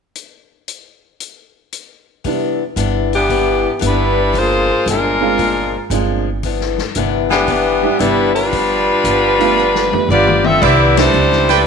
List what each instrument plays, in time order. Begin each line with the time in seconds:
0.15 closed hi-hat
0.68 closed hi-hat
1.20 closed hi-hat
1.72 closed hi-hat
2.24 steel-string acoustic guitar C3 E3 B3 D4, grand piano G3 B3 D4 E4, kick, open hi-hat
2.76 upright bass G1, steel-string acoustic guitar C3 E3 B3 D4, closed hi-hat
3.13 saxophone section E3 B3 D4 G4, open hi-hat
3.28 steel-string acoustic guitar C3 E3 B3, kick, open hi-hat
3.32 steel-string acoustic guitar D4
3.79 upright bass G1, steel-string acoustic guitar C3 E3 B3 D4, closed hi-hat
3.87 saxophone section G3 D4 E4 B4
4.32 steel-string acoustic guitar A#2 F3 G#3 D4, kick, open hi-hat
4.38 saxophone section A#3 F4 G#4 C5
4.86 upright bass G1, steel-string acoustic guitar A#2 F3 G#3 D4, saxophone section D4, closed hi-hat
4.90 saxophone section G#3 F4 A#4
5.21 grand piano G#3 C4 D4 F4
5.38 steel-string acoustic guitar A#2 F3 G#3 D4, kick, open hi-hat
5.90 upright bass G1, steel-string acoustic guitar A#2 F3 G#3 D4, grand piano G#3 C4 D4 F4, closed hi-hat
6.43 steel-string acoustic guitar C3 E3 B3 D4, kick, open hi-hat
6.61 snare
6.78 snare
6.95 upright bass G1, steel-string acoustic guitar C3 E3 B3 D4, closed hi-hat
7.30 saxophone section E3 B3 D4 G4, snare
7.47 steel-string acoustic guitar C3 E3 B3 D4, kick, open hi-hat
7.83 grand piano G3 B3 D4 E4
7.99 upright bass G1, steel-string acoustic guitar C3 E3 B3 D4, saxophone section G3 D4 E4 B4, closed hi-hat
8.34 saxophone section G3 D4 F4 B4, open hi-hat
8.51 steel-string acoustic guitar G2 F3 B3 D4, kick, open hi-hat
9.04 upright bass G1, steel-string acoustic guitar G2 F3 B3 D4, closed hi-hat
9.39 grand piano A3 B3 D4 F4, open hi-hat
9.58 steel-string acoustic guitar G2 F3 B3 D4
9.75 snare
9.92 grand piano A3 B3 D4 G4, floor tom
10.09 upright bass G1, steel-string acoustic guitar G2 F3 B3 D4, saxophone section B3 F4 G4 D5, mid tom
10.27 mid tom
10.44 saxophone section C4 F4 A4 E5, mid tom
10.61 upright bass C2, steel-string acoustic guitar C3 E3 B3 D4, saxophone section B3 E4 G4 D5, trumpet section B4 C5 D5 E5, kick, crash
10.97 grand piano G3 B3 D4 E4, saxophone section G3 D4 E4 C5, snare, ride
11.13 upright bass C#2, steel-string acoustic guitar C3 E3 B3 D4
11.32 snare
11.49 saxophone section G3 D4 E4 B4, trumpet section B4 C5 D5 G5, snare, open hi-hat